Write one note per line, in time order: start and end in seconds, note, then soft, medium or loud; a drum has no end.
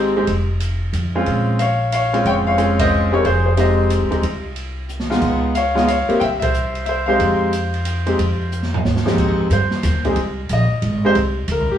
0.00 0.23 G#1 medium
0.00 0.14 G#3 medium
0.00 0.13 C4 medium
0.00 0.14 D#4 medium
0.00 0.14 G4 medium
0.16 0.26 G#3 medium
0.16 0.27 C4 medium
0.16 0.27 D#4 medium
0.16 0.27 G4 medium
0.27 0.89 F1 medium
0.27 kick soft
0.27 ride medium
0.60 hi-hat pedal medium
0.60 ride medium
0.93 1.24 F2 medium
0.93 hi-hat pedal soft
0.93 ride medium
1.15 1.57 G#3 medium
1.15 1.57 C4 medium
1.15 1.57 C#4 medium
1.15 1.57 F4 medium
1.26 2.21 A#1 medium
1.26 kick soft
1.26 ride medium
1.59 1.91 C#5 medium
1.59 1.90 F5 medium
1.59 hi-hat pedal medium
1.59 ride medium
1.92 2.24 C#5 medium
1.92 2.23 F5 medium
1.92 hi-hat pedal medium
1.92 ride medium
2.13 2.56 G#3 medium
2.13 2.56 C4 medium
2.13 2.56 C#4 medium
2.13 2.56 F4 medium
2.13 ride soft
2.25 3.20 F1 medium
2.25 2.34 C#5 medium
2.25 2.32 G5 loud
2.25 kick soft
2.25 ride medium
2.47 2.78 C#5 medium
2.47 2.80 F5 medium
2.57 3.07 G#3 medium
2.57 3.08 C4 medium
2.57 3.08 C#4 medium
2.57 3.08 F4 medium
2.57 hi-hat pedal medium
2.57 ride medium
2.79 3.11 C5 medium
2.79 3.13 D#5 loud
2.79 kick medium
2.79 ride medium
3.12 3.23 G#3 medium
3.12 3.23 C4 medium
3.12 3.23 D#4 medium
3.12 3.23 G4 medium
3.12 3.25 A#4 medium
3.12 3.24 C#5 medium
3.24 3.97 F1 medium
3.24 3.45 G#4 medium
3.24 3.45 C5 medium
3.24 kick soft
3.24 ride medium
3.46 3.52 G#4 medium
3.46 3.51 C5 medium
3.57 4.07 G#3 medium
3.57 4.07 C4 medium
3.57 4.07 D#4 medium
3.57 4.07 G4 medium
3.57 3.89 C5 medium
3.57 3.89 D#5 medium
3.57 hi-hat pedal medium
3.57 ride medium
3.90 hi-hat pedal medium
3.90 ride medium
4.01 4.11 C2 medium
4.10 4.22 D#2 medium
4.10 4.21 G#3 medium
4.10 4.22 C4 medium
4.10 4.21 D#4 medium
4.10 4.22 G4 medium
4.10 ride soft
4.23 5.18 C2 medium
4.23 kick soft
4.23 ride medium
4.56 ride medium
4.89 hi-hat pedal medium
5.00 snare medium
5.10 5.52 G#3 medium
5.10 5.52 B3 medium
5.10 5.52 D#4 medium
5.10 5.52 F4 medium
5.10 snare medium
5.22 6.05 C#2 medium
5.22 kick medium
5.22 crash medium
5.55 5.87 C#5 medium
5.55 5.86 F5 medium
5.55 hi-hat pedal medium
5.55 ride medium
5.75 5.86 G#3 medium
5.75 5.86 B3 medium
5.75 5.86 D#4 medium
5.75 5.86 F4 medium
5.75 snare medium
5.88 6.19 C#5 medium
5.88 6.22 F5 medium
5.88 hi-hat pedal soft
5.88 ride medium
6.08 6.19 A#3 medium
6.08 6.19 C4 medium
6.08 6.20 E4 medium
6.08 6.20 G4 medium
6.08 muted upright bass stroke soft
6.08 ride soft
6.20 7.16 C2 medium
6.20 6.28 E5 medium
6.20 6.25 G5 medium
6.20 kick soft
6.20 ride medium
6.40 6.84 C5 medium
6.40 6.84 E5 medium
6.40 kick medium
6.40 ride medium
6.54 hi-hat pedal soft
6.75 ride soft
6.86 7.07 C5 medium
6.86 7.08 E5 medium
6.86 ride medium
7.06 7.50 G#3 medium
7.06 7.50 C4 medium
7.06 7.50 D#4 medium
7.06 7.50 G4 medium
7.06 8.81 C5 medium
7.06 8.80 F5 medium
7.20 8.14 F2 medium
7.20 kick soft
7.20 ride medium
7.53 hi-hat pedal medium
7.53 ride medium
7.74 ride soft
7.85 hi-hat pedal medium
7.85 ride medium
8.06 8.17 G#3 medium
8.06 8.17 C4 medium
8.06 8.17 D#4 medium
8.06 8.18 G4 medium
8.06 ride soft
8.19 8.80 F2 medium
8.19 kick soft
8.19 ride medium
8.52 hi-hat pedal medium
8.63 snare medium
8.74 floor tom medium
8.85 9.15 D#2 medium
8.85 snare medium
8.96 snare medium
9.05 9.48 F2 medium
9.05 9.48 G#3 medium
9.05 9.48 C4 medium
9.05 9.48 D#4 medium
9.05 9.48 G4 medium
9.05 snare medium
9.18 9.49 F2 medium
9.18 kick medium
9.18 crash medium
9.50 9.82 G2 medium
9.50 10.02 C5 medium
9.50 hi-hat pedal medium
9.50 ride medium
9.71 snare medium
9.83 10.15 D#2 medium
9.83 kick soft
9.83 snare soft
9.83 hi-hat pedal medium
9.83 ride medium
10.04 10.15 G#3 medium
10.04 10.15 C4 medium
10.04 10.15 D#4 medium
10.04 10.15 G4 medium
10.04 10.17 G#4 medium
10.04 kick medium
10.04 ride soft
10.16 10.48 C2 medium
10.16 kick soft
10.16 ride medium
10.49 10.69 A#1 medium
10.49 11.01 D#5 medium
10.49 kick soft
10.49 hi-hat pedal medium
10.49 ride medium
10.71 muted upright bass stroke soft
10.82 11.14 G#1 medium
10.82 kick soft
10.82 ride medium
11.05 11.15 G#3 medium
11.05 11.15 C4 medium
11.05 11.15 D#4 medium
11.05 11.15 G4 medium
11.05 11.12 C5 medium
11.15 11.47 C2 medium
11.15 kick soft
11.15 ride medium
11.48 11.58 D2 medium
11.48 11.70 A#4 medium
11.48 kick soft
11.48 hi-hat pedal soft
11.48 ride medium
11.58 11.69 C2 medium
11.70 11.78 G#1 medium
11.70 11.78 G4 medium